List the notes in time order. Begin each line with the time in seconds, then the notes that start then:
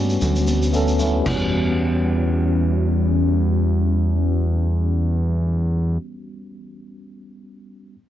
Already playing: G2 G3 A3 B3 C#4 F#4
0.10 shaker
0.21 D2, low conga, shaker
0.36 shaker
0.47 high conga, shaker
0.62 shaker
0.73 A3 B3 C#4 A4, shaker
0.88 shaker
0.99 A3 B3 C#4 E4, high conga, low conga, shaker
1.14 high conga
1.20 G3
1.24 E2 E3 G3 B3 C#4 F#4, kick, crash, high conga
1.29 C#4
1.34 F#4